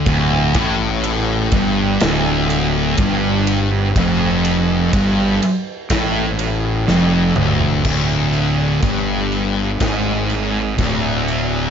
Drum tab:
CC |----------------|----------------|x-x-x-x-x-x-x-x-|
RD |x-x-x-x-x-x-x-x-|x-x-x-x-x-x-----|----------------|
SD |--------o-------|--------o---o---|--------o-------|
T2 |----------------|--------------o-|----------------|
FT |----------------|---------------o|----------------|
BD |o-o---o-----o---|o---o---o-------|o---o---o---o---|